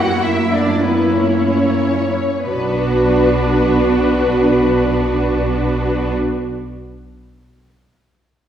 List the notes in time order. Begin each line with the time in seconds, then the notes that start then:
Already playing: F#2 A#3 E4 F#4 F#5
0.23 E4 E5
0.52 D4 D5
0.82 B3 B4
1.14 C#4 C#5
2.46 B1 B3 D4 F#4 B4